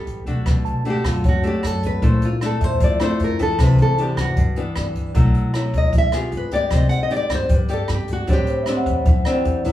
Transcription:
Already playing: nylon-string guitar G3 B3 G4 A4
0.06 upright bass A1, closed hi-hat
0.26 upright bass B1, nylon-string guitar A3 D4 F#4, kick, closed hi-hat
0.46 upright bass B1, nylon-string guitar B2, kick, cross-stick, closed hi-hat
0.65 tine electric piano A5, closed hi-hat
0.85 nylon-string guitar A3 D4 F#4, closed hi-hat
0.90 nylon-string guitar G4
1.04 upright bass F#2, nylon-string guitar F4, kick, cross-stick, closed hi-hat
1.24 upright bass F#2, nylon-string guitar F#3, kick, closed hi-hat
1.29 nylon-string guitar F#4
1.43 nylon-string guitar A3 D4 F#4 G4, closed hi-hat
1.63 upright bass F#2, nylon-string guitar A4, cross-stick, closed hi-hat
1.83 nylon-string guitar B4, kick, closed hi-hat
2.02 upright bass A#1, nylon-string guitar A#2 A3 D4 E4, kick, closed hi-hat
2.06 nylon-string guitar C5
2.22 nylon-string guitar F4, closed hi-hat
2.41 nylon-string guitar A3 D4 E4, cross-stick, closed hi-hat
2.46 nylon-string guitar A4
2.61 upright bass F2, nylon-string guitar C5, tine electric piano E5, kick, closed hi-hat
2.80 upright bass F2, nylon-string guitar F3 D5, kick, closed hi-hat
3.00 nylon-string guitar A3 D4 E4 C5, cross-stick, closed hi-hat
3.19 upright bass F2, closed hi-hat
3.24 nylon-string guitar A#4
3.39 nylon-string guitar E3 B3 D4 A4, kick, closed hi-hat
3.58 upright bass C2, nylon-string guitar C3, kick, cross-stick, closed hi-hat
3.64 nylon-string guitar B4
3.78 closed hi-hat
3.82 nylon-string guitar A4
3.98 nylon-string guitar E3 B3 D4, closed hi-hat
4.03 nylon-string guitar G4
4.17 upright bass G2, nylon-string guitar F#4, kick, cross-stick, closed hi-hat
4.36 upright bass G2, nylon-string guitar G2, kick, closed hi-hat
4.56 nylon-string guitar E3 B3 D4, closed hi-hat
4.76 upright bass G2, tine electric piano D5, cross-stick, closed hi-hat
4.95 kick, closed hi-hat
5.14 upright bass B1, nylon-string guitar B2 F#3 A3 E4, kick, closed hi-hat
5.34 closed hi-hat
5.54 nylon-string guitar F#3 A3 E4, cross-stick, closed hi-hat
5.73 upright bass D2, kick, closed hi-hat
5.78 nylon-string guitar D#5
5.92 upright bass D2, nylon-string guitar B2, kick, closed hi-hat
5.98 nylon-string guitar E5
6.12 nylon-string guitar B3 F4 G#4, cross-stick, closed hi-hat
6.17 nylon-string guitar G4
6.32 upright bass G1, closed hi-hat
6.37 nylon-string guitar B4
6.51 nylon-string guitar D#4 G4 D5, kick, closed hi-hat
6.55 nylon-string guitar D5
6.71 upright bass C2, nylon-string guitar C4, kick, cross-stick, closed hi-hat
6.76 nylon-string guitar D#5
6.89 nylon-string guitar F#5, closed hi-hat
7.03 nylon-string guitar D#5
7.10 nylon-string guitar D#4 G4 D5, closed hi-hat
7.16 nylon-string guitar D5
7.29 upright bass G2, kick, cross-stick, closed hi-hat
7.35 nylon-string guitar C5
7.49 upright bass G2, nylon-string guitar G3, kick, closed hi-hat
7.54 nylon-string guitar B4
7.68 nylon-string guitar D#4 G4 D5, closed hi-hat
7.73 nylon-string guitar A4
7.88 upright bass G2, cross-stick, closed hi-hat
7.94 nylon-string guitar G4
8.08 kick, closed hi-hat
8.13 nylon-string guitar F#4
8.27 upright bass A1, nylon-string guitar A2 G3 C4 D4, kick, closed hi-hat
8.33 nylon-string guitar G4
8.47 tine electric piano C5, closed hi-hat
8.63 tine electric piano E5, cross-stick, closed hi-hat
8.67 nylon-string guitar G3 C4 D4
8.77 tine electric piano F#5
8.86 upright bass E2, kick, closed hi-hat
9.05 upright bass E2, nylon-string guitar E3, kick, closed hi-hat
9.25 nylon-string guitar G3 C4 D4, tine electric piano D5, cross-stick, closed hi-hat
9.45 upright bass E2, closed hi-hat
9.64 nylon-string guitar F#3 B3 E4, kick, closed hi-hat

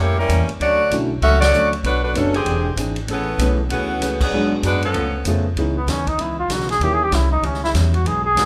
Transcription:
Already playing: upright bass F2, hollow-body jazz guitar A2
0.00 hollow-body jazz guitar G3 A#3 C#4, saxophone section A#3 E4 G4 C#5
0.19 saxophone section G3 C#4 E4 A#4
0.29 upright bass E2, hollow-body jazz guitar A2 G3 A#3 C#4, hi-hat pedal, ride
0.49 muted upright bass stroke, ride
0.60 upright bass D2, hollow-body jazz guitar D3 F#3 A3 C#4, saxophone section A3 F#4 C#5 D5, ride
0.91 upright bass B1, hollow-body jazz guitar D3 F#3 A3 C#4, upright piano D3 F#3 A3 C#4 E4, hi-hat pedal, ride
1.22 upright bass C#2, hollow-body jazz guitar D3 F#3 A3 C#4, saxophone section C#4 F#4 A4 E5, ride
1.41 saxophone section A3 F#4 C#5 D5, snare, ride
1.52 upright bass D2, hollow-body jazz guitar D3 F#3 A3 C#4, hi-hat pedal
1.73 ride
1.83 upright bass B1, saxophone section A3 D4 F#4 B4, hollow-body jazz guitar B3 D4 A4 C#5, ride
2.04 saxophone section A3 D4 F#4 B4
2.14 upright bass F#1, upright piano D3 A3 B3 C#4 F#4, saxophone section F#3 C#4 D4 A4, hollow-body jazz guitar B3 D4 A4 C#5, hi-hat pedal, ride
2.34 saxophone section D3 C4 G4 G#4, ride
2.45 upright bass E1, hollow-body jazz guitar E3 C4 D4, ride
2.50 hollow-body jazz guitar G#4
2.76 upright bass G#1, hollow-body jazz guitar E3 C4 D4 G#4, hi-hat pedal, ride
2.96 ride
3.08 upright bass A1, saxophone section E3 B3 C#4 A4, hollow-body jazz guitar A3 C#4 G#4, ride
3.12 hollow-body jazz guitar B4
3.38 upright bass B1, upright piano E3 A3 B3 C#4 G#4, hollow-body jazz guitar A3 C#4 G#4 B4, hi-hat pedal, ride
3.69 upright bass D2, saxophone section E3 B3 C#4 F#4, hollow-body jazz guitar A3 C#4 G#4, ride
3.74 hollow-body jazz guitar B4
4.00 upright bass C#2, hollow-body jazz guitar A3 C#4 G#4 B4, hi-hat pedal, ride
4.21 saxophone section F#3 B3 D4 G#4, kick, crash
4.31 upright bass G#2, hollow-body jazz guitar G#2 F#3 B3, upright piano F#3 G#3 B3 D4 G#4
4.35 hollow-body jazz guitar D4
4.63 upright bass F#2, hollow-body jazz guitar G#2 F#3 B3 D4, saxophone section G#3 D4 F#4 B4, hi-hat pedal, ride
4.83 saxophone section F3 B3 C#4 A4, ride
4.94 upright bass C#2, hollow-body jazz guitar C#3 A3 B3 F4, ride
5.25 upright bass F2, hollow-body jazz guitar C#3 A3 B3 F4, upright piano F3 A3 B3 C#4 G#4, hi-hat pedal, ride
5.56 upright bass C#2, hollow-body jazz guitar C#3 E3 B3 D#4, upright piano E3 B3 C#4 D#4 G#4, ride
5.77 trumpet B3
5.87 upright bass D#2, hollow-body jazz guitar C#3 E3 B3 D#4, trumpet C#4, snare, hi-hat pedal, ride
6.07 trumpet D#4, kick, ride
6.18 upright bass C#2, hollow-body jazz guitar C#3 E3 B3, trumpet E4, ride
6.22 hollow-body jazz guitar D#4
6.39 trumpet F4
6.48 upright bass B1, hollow-body jazz guitar C#3 E3 B3 D#4, trumpet F#4, snare, hi-hat pedal, ride
6.60 snare
6.69 trumpet G#4, snare, ride
6.80 upright bass D#2, hollow-body jazz guitar D#3 G3 C#4, upright piano E3 A#3 C#4 D#4 G4, trumpet G4, ride
6.84 hollow-body jazz guitar E4
6.93 trumpet G#4
7.03 trumpet G4
7.11 upright bass C2, hollow-body jazz guitar D#3 G3 C#4 E4, trumpet E4, snare, hi-hat pedal, ride
7.32 trumpet D#4
7.42 upright bass C#2, hollow-body jazz guitar D#3 G3 C#4 E4, trumpet C#4, ride
7.54 snare
7.63 trumpet E4, snare
7.74 upright bass E2, hollow-body jazz guitar D#3 G3 C#4 E4, snare, hi-hat pedal, ride
7.94 trumpet F#4, ride
8.04 upright bass B1, hollow-body jazz guitar G#2 F#3 B3 D#4, trumpet G#4, ride
8.25 trumpet G#4
8.35 upright bass D#2, hollow-body jazz guitar G#2 F#3 B3 D#4, snare, hi-hat pedal, ride

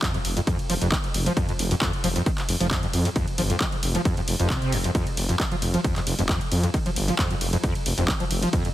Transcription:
0.02 acid bass F2, kick, clap, closed hi-hat, ride
0.14 acid bass F2, ride
0.25 detuned saw bass F1, open hi-hat, ride
0.37 acid bass F2, closed hi-hat, ride
0.47 acid bass F2, kick, closed hi-hat, ride
0.59 ride
0.69 detuned saw bass F1, acid bass F3, open hi-hat, ride
0.81 detuned saw bass F1, acid bass F2, closed hi-hat, ride
0.92 acid bass D#3, kick, clap, closed hi-hat, ride
1.04 ride
1.14 detuned saw bass F1, open hi-hat, ride
1.26 acid bass F3, closed hi-hat, ride
1.37 acid bass F2, kick, closed hi-hat, ride
1.49 acid bass F2, ride
1.59 detuned saw bass F1, open hi-hat, ride
1.71 acid bass F2, closed hi-hat, ride
1.81 acid bass F2, kick, clap, closed hi-hat, ride
1.93 ride
2.04 detuned saw bass F1, acid bass F3, open hi-hat, ride
2.16 acid bass F2, closed hi-hat, ride
2.26 acid bass D#3, kick, closed hi-hat, ride
2.38 clap, ride
2.49 detuned saw bass F1, open hi-hat, ride
2.60 detuned saw bass F1, acid bass F3, closed hi-hat, ride
2.71 acid bass F2, kick, clap, closed hi-hat, ride
2.83 acid bass F2, ride
2.93 detuned saw bass F2, open hi-hat, ride
3.05 acid bass F2, closed hi-hat, ride
3.16 acid bass F2, kick, closed hi-hat, ride
3.28 ride
3.38 detuned saw bass G1, acid bass F3, open hi-hat, ride
3.50 acid bass F2, closed hi-hat, ride
3.60 acid bass D#3, kick, clap, closed hi-hat, ride
3.72 ride
3.83 detuned saw bass F1, open hi-hat, ride
3.95 acid bass F3, closed hi-hat, ride
4.05 acid bass F2, kick, closed hi-hat, ride
4.17 acid bass F2, ride
4.28 detuned saw bass F1, open hi-hat, ride
4.40 detuned saw bass F1, acid bass F2, closed hi-hat, ride
4.50 acid bass C3, kick, clap, closed hi-hat, ride
4.62 ride
4.72 detuned saw bass F1, acid bass F2, open hi-hat, ride
4.84 acid bass F2, closed hi-hat, ride
4.95 acid bass F2, kick, closed hi-hat, ride
5.07 ride
5.17 detuned saw bass F1, open hi-hat, ride
5.29 acid bass F2, closed hi-hat, ride
5.40 acid bass D#3, kick, clap, closed hi-hat, ride
5.51 acid bass F3, ride
5.62 detuned saw bass F1, open hi-hat, ride
5.74 acid bass F3, closed hi-hat, ride
5.84 acid bass F2, kick, closed hi-hat, ride
5.96 acid bass F2, clap, ride
6.07 detuned saw bass F1, open hi-hat, ride
6.19 detuned saw bass F1, acid bass F2, closed hi-hat, ride
6.29 acid bass F2, kick, clap, closed hi-hat, ride
6.41 ride
6.52 detuned saw bass F2, open hi-hat, ride
6.63 acid bass F2, closed hi-hat, ride
6.74 acid bass D#3, kick, closed hi-hat, ride
6.86 acid bass F3, ride
6.96 detuned saw bass G1, open hi-hat, ride
7.08 acid bass F3, closed hi-hat, ride
7.19 acid bass F2, kick, clap, closed hi-hat, ride
7.30 acid bass F2, ride
7.41 detuned saw bass F1, open hi-hat, ride
7.53 acid bass F2, closed hi-hat, ride
7.63 acid bass F2, kick, closed hi-hat, ride
7.75 ride
7.86 detuned saw bass F1, open hi-hat, ride
7.98 detuned saw bass F1, acid bass F2, closed hi-hat, ride
8.08 acid bass D#3, kick, clap, closed hi-hat, ride
8.20 acid bass F3, ride
8.31 detuned saw bass F1, open hi-hat, ride
8.42 acid bass F3, closed hi-hat, ride
8.53 acid bass F2, kick, closed hi-hat, ride
8.65 acid bass F2, ride

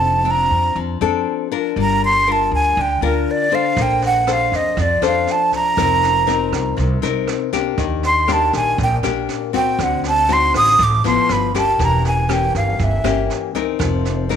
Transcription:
Already playing: upright bass F1, nylon-string guitar F3 C4 D4 A4, flute A5
0.25 nylon-string guitar C4 D4
0.31 flute A#5
0.51 upright bass F2
0.75 upright bass F2, nylon-string guitar F3
1.01 upright bass F2, nylon-string guitar C4 D4 A4
1.52 nylon-string guitar D4 F4 A#4
1.76 upright bass G1, nylon-string guitar G3
1.81 flute A#5
2.05 flute C6
2.27 nylon-string guitar D4 F4 A#4
2.32 flute A5
2.52 upright bass D2, flute G#5
2.77 upright bass D2, nylon-string guitar D3
2.81 flute G5
3.01 upright bass D2, nylon-string guitar D4 F4 A#4, flute A#4
3.31 flute D5
3.51 nylon-string guitar D4 A4 C5, flute F5
3.77 upright bass A#1, nylon-string guitar A#3, kick, snare
3.82 flute G5
4.02 flute F#5, snare
4.27 nylon-string guitar D4 A4 C5, cross-stick, snare
4.32 flute F5
4.52 upright bass F2, flute D#5, kick, snare
4.77 upright bass F2, nylon-string guitar F3, kick, snare
4.82 flute D5
5.02 upright bass F2, nylon-string guitar D4 A4 C5, cross-stick, snare
5.06 flute F5
5.27 snare
5.32 flute A5
5.52 flute A#5, kick, snare
5.77 upright bass F1, nylon-string guitar F3 C4 D#4 A#4, kick, cross-stick, snare
6.03 snare
6.27 nylon-string guitar C4 D#4 A#4, snare
6.52 upright bass C2, kick, cross-stick, snare
6.77 upright bass C2, nylon-string guitar C3, kick, snare
7.02 upright bass C2, nylon-string guitar C4 D#4 A#4, snare
7.28 cross-stick, snare
7.53 nylon-string guitar A#3 D4 G4, kick, snare
7.78 upright bass D#2, nylon-string guitar D#3, kick, snare
8.03 flute C6, snare
8.28 nylon-string guitar A#3 D4 G4, cross-stick, snare
8.32 flute A5
8.53 upright bass A#1, flute G#5, kick, snare
8.78 upright bass A#1, nylon-string guitar A#2, kick, snare
8.83 flute G5
9.03 upright bass A#1, nylon-string guitar A#3 D4 G4, cross-stick, snare
9.29 snare
9.53 nylon-string guitar C4 F#4, flute G5, kick, snare
9.79 upright bass D2, nylon-string guitar D3, kick, cross-stick, snare
9.83 flute F#5
10.04 flute A5, snare
10.28 nylon-string guitar C4 D#4 F#4, snare
10.33 flute C6
10.54 upright bass A1, flute D#6, kick, cross-stick, snare
10.79 upright bass A1, nylon-string guitar A2, kick, snare
10.83 flute D6
11.04 upright bass A1, nylon-string guitar F3 B3 E4, flute C6, snare
11.29 upright bass G1, flute B5, cross-stick, snare
11.54 nylon-string guitar A#3 C#4 G4, flute A5, kick, snare
11.79 upright bass E1, nylon-string guitar E3, kick, snare
11.84 flute A#5
12.05 flute G#5, snare
12.29 nylon-string guitar A#3 C#4 G4, cross-stick, snare
12.33 flute G5
12.55 upright bass G1, flute F5, kick, snare
12.79 upright bass G1, nylon-string guitar E3, kick, snare
12.83 flute E5
13.04 upright bass G1, nylon-string guitar A#3 C#4 G4, cross-stick, snare
13.30 snare
13.55 nylon-string guitar C4 D#4 A#4, kick, snare
13.79 upright bass F1, nylon-string guitar F3, kick, cross-stick, snare
14.05 snare
14.29 nylon-string guitar C4 D#4 A#4, snare

